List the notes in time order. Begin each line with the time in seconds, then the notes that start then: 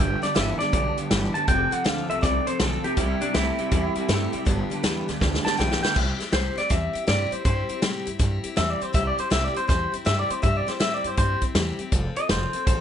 0.00 G1 G2 D3 G3 B3 D4 G4 G5
0.22 G2 D3 G3 B3 D4 G4 D5, muted upright bass stroke, snare, closed hi-hat
0.34 G1 G2 D3 E3 G3 B3 D4 G4 E5, snare, closed hi-hat
0.59 G2 D3 G3 B3 D4 G4 D5, muted upright bass stroke, snare, closed hi-hat
0.72 B1 G2 D3 G3 B3 D4 G4, kick, closed hi-hat
0.97 G2 D3 G3 B3 D4 G4, muted upright bass stroke, closed hi-hat
1.11 G1 G2 D3 E3 G3 B3 D4 G4, snare, closed hi-hat
1.34 G2 D3 G3 B3 D4 G4 A5, closed hi-hat
1.47 F1 F2 C3 F3 C4 F4 A4 G5, kick, closed hi-hat
1.71 F2 C3 C4 F4 A4 F#5, muted upright bass stroke, closed hi-hat
1.84 D2 F2 D3 F3 C4 F4 A4 F5, snare, closed hi-hat
2.09 C2 F2 C3 C4 F4 A4 E5, closed hi-hat
2.21 C2 F2 C3 F3 C4 F4 A4 D5, kick, snare, closed hi-hat
2.47 F2 C3 C4 F4 A4 C5, muted upright bass stroke, closed hi-hat
2.59 B1 F2 D3 F3 C4 F4 A4, snare, closed hi-hat
2.83 F2 C3 C4 F4 G4 A4, closed hi-hat
2.97 C2 C3 G3 C4 E4 G4, kick, closed hi-hat
3.21 C3 G3 C4 D4 E4 G4, muted upright bass stroke, closed hi-hat
3.34 C2 C3 G3 A3 C4 E4 G4, snare, closed hi-hat
3.58 C3 G3 C4 E4 G4, closed hi-hat
3.71 E2 C3 G3 C4 E4 G4, kick, closed hi-hat
3.95 C3 G3 C4 E4 G4, muted upright bass stroke, closed hi-hat
4.09 G2 C3 G3 A3 C4 E4 G4, snare, closed hi-hat
4.32 C3 G3 C4 E4 G4, muted upright bass stroke, closed hi-hat
4.45 G1 G2 D3 G3 B3 D4 G4, kick, closed hi-hat
4.70 G2 D3 G3 B3 D4 G4, closed hi-hat
4.83 E2 G2 D3 E3 G3 B3 D4 G4, snare, closed hi-hat
5.08 D2 G2 D3 G3 B3 D4 G4, snare, closed hi-hat
5.20 D2 G2 D3 G3 B3 D4 G4, kick, snare
5.34 snare
5.44 G2 D3 G3 B3 D4 G4 A5, muted upright bass stroke, snare
5.57 B1 G2 D3 E3 G3 B3 D4 G4 G5, snare
5.71 snare
5.82 G2 D3 G3 B3 D4 G4 G5, muted upright bass stroke, snare
5.95 C2 C3 G3 C4 E4 G4, kick, crash
6.19 C4 E4 G4, snare, closed hi-hat
6.32 C2 C3 G3 C4 E4 G4 C5, snare, closed hi-hat
6.56 C4 E4 G4 D5, muted upright bass stroke, snare, closed hi-hat
6.69 E2 G3 C4 E4 G4 E5, kick, snare, closed hi-hat
6.93 C4 E4 G4, muted upright bass stroke, closed hi-hat
7.07 G2 C3 G3 C4 E4 G4 D5, snare, closed hi-hat
7.31 C4 E4 G4 C5, muted upright bass stroke, closed hi-hat
7.45 G2 C3 G3 C4 E4 G4 C5, kick, closed hi-hat
7.69 C4 E4 G4, muted upright bass stroke, closed hi-hat
7.82 A2 C3 G3 C4 E4 G4, snare, closed hi-hat
8.05 G2 C4 E4 G4, closed hi-hat
8.19 G2 G3 C4 E4 G4, kick, snare, closed hi-hat
8.43 C4 E4 G4, muted upright bass stroke, closed hi-hat
8.56 E2 C3 G3 C4 E4 G4 E5, snare, closed hi-hat
8.70 D5
8.80 C4 E4 G4 C5, muted upright bass stroke, closed hi-hat
8.93 C2 C3 G3 C4 E4 G4 E5, kick, closed hi-hat
9.07 D5
9.18 C4 E4 G4 C5, closed hi-hat
9.30 C2 C3 G3 C4 E4 G4 E5, snare, closed hi-hat
9.44 D5
9.54 C4 E4 G4 C5, closed hi-hat
9.67 E2 G3 C4 E4 G4 C5, kick, snare, closed hi-hat
9.92 C4 E4 G4, muted upright bass stroke, closed hi-hat
10.05 G2 C3 G3 C4 E4 G4 E5, snare, closed hi-hat
10.19 D5
10.29 C4 E4 G4 C5, muted upright bass stroke, closed hi-hat
10.42 G2 C3 G3 C4 E4 G4 E5, kick, closed hi-hat
10.57 D5
10.67 C4 E4 G4 C5, muted upright bass stroke, snare, closed hi-hat
10.80 A2 C3 G3 C4 E4 G4 E5, snare, closed hi-hat
10.94 D5
11.04 G2 C4 E4 G4 C5, closed hi-hat
11.17 G2 G3 C4 E4 G4 C5, kick, closed hi-hat
11.41 C4 E4 G4, kick, closed hi-hat
11.54 E2 C3 G3 C4 E4 G4, snare, closed hi-hat
11.79 C4 E4 G4, muted upright bass stroke, closed hi-hat
11.92 F1 F3 C4 F4 A4, kick, closed hi-hat
12.16 C4 F4 A4 D#5, closed hi-hat
12.29 F1 F3 C4 F4 A4 C5, snare, closed hi-hat
12.53 C4 F4 A4, closed hi-hat
12.67 A1 F3 C4 F4 A4 C5, kick, closed hi-hat